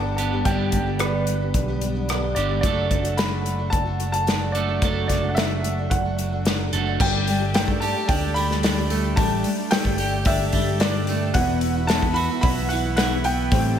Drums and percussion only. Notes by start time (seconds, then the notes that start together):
0.18 closed hi-hat
0.45 kick, closed hi-hat
0.72 kick, closed hi-hat
0.99 cross-stick, closed hi-hat
1.27 closed hi-hat
1.54 kick, closed hi-hat
1.81 closed hi-hat
2.09 cross-stick, closed hi-hat
2.36 closed hi-hat
2.63 kick, closed hi-hat
2.91 kick, closed hi-hat
3.05 closed hi-hat
3.18 snare, closed hi-hat
3.46 closed hi-hat
3.73 kick, closed hi-hat
4.00 closed hi-hat
4.14 closed hi-hat
4.27 snare, closed hi-hat
4.55 closed hi-hat
4.82 kick, closed hi-hat
5.09 kick, snare, closed hi-hat
5.37 snare, closed hi-hat
5.64 closed hi-hat
5.91 kick, closed hi-hat
6.19 closed hi-hat
6.45 snare, closed hi-hat
6.73 closed hi-hat
7.00 kick, crash
7.27 open hi-hat
7.54 snare, open hi-hat
7.68 kick
7.82 open hi-hat
8.09 kick, open hi-hat
8.36 open hi-hat
8.51 snare
8.63 snare, open hi-hat
8.90 open hi-hat
9.17 kick, open hi-hat
9.44 open hi-hat
9.71 snare, open hi-hat
9.85 kick
9.98 open hi-hat
10.25 kick, open hi-hat
10.52 kick, open hi-hat
10.80 snare, open hi-hat
11.07 open hi-hat
11.34 kick, open hi-hat
11.61 open hi-hat
11.89 snare, open hi-hat
12.02 kick
12.16 open hi-hat
12.43 kick, open hi-hat
12.70 open hi-hat
12.97 snare, open hi-hat
13.24 open hi-hat
13.52 kick, open hi-hat